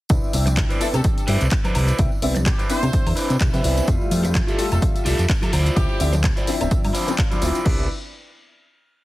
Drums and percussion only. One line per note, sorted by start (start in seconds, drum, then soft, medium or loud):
0.09 kick loud
0.09 closed hi-hat medium
0.09 tambourine medium
0.09 tambourine soft
0.24 tambourine soft
0.33 open hi-hat loud
0.33 tambourine medium
0.46 closed hi-hat medium
0.46 tambourine medium
0.46 tambourine soft
0.46 high conga medium
0.57 kick loud
0.57 clap loud
0.57 closed hi-hat medium
0.57 tambourine soft
0.70 closed hi-hat soft
0.70 tambourine soft
0.81 open hi-hat loud
0.81 tambourine medium
0.93 closed hi-hat medium
0.93 tambourine medium
0.93 tambourine soft
0.93 low conga medium
0.93 high woodblock medium
1.04 kick loud
1.04 closed hi-hat medium
1.04 tambourine medium
1.04 tambourine soft
1.04 high conga medium
1.18 closed hi-hat soft
1.18 tambourine soft
1.28 open hi-hat loud
1.28 tambourine medium
1.41 closed hi-hat medium
1.41 tambourine medium
1.41 tambourine soft
1.51 kick loud
1.51 clap loud
1.51 closed hi-hat medium
1.51 tambourine medium
1.51 tambourine soft
1.64 closed hi-hat soft
1.64 tambourine soft
1.64 high conga loud
1.64 high woodblock medium
1.75 open hi-hat loud
1.75 tambourine medium
1.75 high woodblock medium
1.88 closed hi-hat medium
1.88 tambourine medium
1.88 tambourine soft
1.98 kick loud
1.98 closed hi-hat medium
1.98 tambourine medium
1.98 tambourine soft
2.12 tambourine soft
2.22 open hi-hat loud
2.22 tambourine medium
2.36 closed hi-hat medium
2.36 tambourine medium
2.36 tambourine soft
2.36 high conga medium
2.46 kick loud
2.46 clap loud
2.46 closed hi-hat medium
2.46 tambourine soft
2.59 closed hi-hat soft
2.59 tambourine soft
2.70 open hi-hat loud
2.70 tambourine medium
2.83 closed hi-hat medium
2.83 tambourine medium
2.83 tambourine soft
2.83 low conga medium
2.83 high woodblock medium
2.93 kick loud
2.93 closed hi-hat medium
2.93 tambourine soft
2.93 tambourine medium
2.93 high conga medium
3.07 open hi-hat medium
3.07 tambourine soft
3.07 high woodblock medium
3.17 open hi-hat loud
3.17 tambourine medium
3.30 closed hi-hat medium
3.30 tambourine medium
3.30 tambourine soft
3.40 kick loud
3.40 clap loud
3.40 closed hi-hat medium
3.40 tambourine soft
3.54 closed hi-hat soft
3.54 tambourine soft
3.54 high conga medium
3.64 open hi-hat loud
3.64 tambourine medium
3.77 closed hi-hat medium
3.77 tambourine medium
3.77 tambourine soft
3.88 kick loud
3.88 closed hi-hat medium
3.88 tambourine soft
4.01 tambourine soft
4.11 open hi-hat loud
4.11 tambourine medium
4.24 closed hi-hat medium
4.24 tambourine medium
4.24 tambourine soft
4.24 high conga medium
4.35 kick loud
4.35 clap loud
4.35 closed hi-hat medium
4.35 tambourine medium
4.35 tambourine soft
4.48 closed hi-hat soft
4.48 tambourine soft
4.59 open hi-hat loud
4.59 tambourine medium
4.72 closed hi-hat medium
4.72 tambourine medium
4.72 tambourine soft
4.72 low conga medium
4.72 high woodblock medium
4.82 kick loud
4.82 closed hi-hat medium
4.82 tambourine soft
4.82 tambourine medium
4.82 high conga medium
4.96 closed hi-hat soft
4.96 tambourine soft
5.06 open hi-hat loud
5.06 tambourine medium
5.19 closed hi-hat medium
5.19 tambourine medium
5.19 tambourine soft
5.29 kick loud
5.29 clap loud
5.29 closed hi-hat medium
5.29 tambourine medium
5.29 tambourine soft
5.42 closed hi-hat soft
5.42 tambourine soft
5.42 high conga loud
5.42 high woodblock medium
5.53 open hi-hat loud
5.53 tambourine medium
5.53 high woodblock medium
5.66 closed hi-hat medium
5.66 tambourine medium
5.66 tambourine soft
5.77 kick loud
5.77 closed hi-hat medium
5.77 tambourine medium
5.77 tambourine soft
5.89 tambourine soft
6.00 open hi-hat loud
6.00 tambourine medium
6.13 closed hi-hat soft
6.13 tambourine medium
6.13 tambourine soft
6.13 high conga medium
6.24 kick loud
6.24 clap loud
6.24 closed hi-hat medium
6.24 tambourine soft
6.37 closed hi-hat soft
6.37 tambourine soft
6.47 open hi-hat loud
6.47 tambourine medium
6.61 closed hi-hat medium
6.61 tambourine soft
6.61 tambourine medium
6.61 low conga medium
6.61 high woodblock medium
6.71 kick loud
6.71 closed hi-hat medium
6.71 tambourine medium
6.71 tambourine soft
6.71 high conga medium
6.84 open hi-hat medium
6.84 tambourine soft
6.84 high woodblock medium
6.95 open hi-hat loud
6.95 tambourine medium
7.08 closed hi-hat medium
7.08 tambourine medium
7.08 tambourine soft
7.18 kick loud
7.18 clap loud
7.18 closed hi-hat medium
7.18 tambourine soft
7.32 closed hi-hat soft
7.32 tambourine soft
7.32 high conga medium
7.42 open hi-hat loud
7.42 tambourine medium
7.55 closed hi-hat soft
7.55 tambourine medium
7.55 tambourine soft
7.66 kick loud
7.66 crash medium